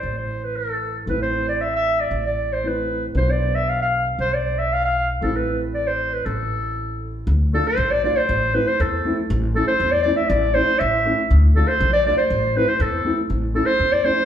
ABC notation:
X:1
M:2/4
L:1/16
Q:1/4=118
K:Am
V:1 name="Clarinet"
c c2 B A3 z | B c2 d e e2 d- | d d2 c B3 z | c d2 e f f2 z |
c d2 e f f2 z | A B2 z d c2 B | A6 z2 | z2 A c2 d d c- |
c2 B c A3 z | z2 A c2 d d e | d2 c2 e4 | z2 A c2 d d c- |
c2 B c A3 z | z2 A c2 d c2 |]
V:2 name="Upright piano"
[A,CE]8 | [A,CE]8- | [A,CE]4 [A,CE]4 | [B,DF]8- |
[B,DF]8 | [A,CE]8- | [A,CE]8 | z2 [A,DF] z3 [A,DF] z |
z2 [A,CE] z3 [A,CE] z | z2 [A,^CE] z3 [A,CE] z | z2 [A,^CE] z3 [A,CE] z | z2 [A,DF] z3 [A,DF] z |
z2 [A,CE] z3 [A,CE] z | z2 [A,^CE] z3 [A,CE] z |]
V:3 name="Upright bass" clef=bass
A,,,8 | A,,,8 | A,,,8 | B,,,8 |
B,,,8 | A,,,8 | A,,,8 | D,,4 _B,,,4 |
A,,,4 E,,4 | A,,,4 E,,4 | A,,,4 A,,,4 | D,,4 _B,,,4 |
A,,,4 E,,4 | A,,,4 E,,4 |]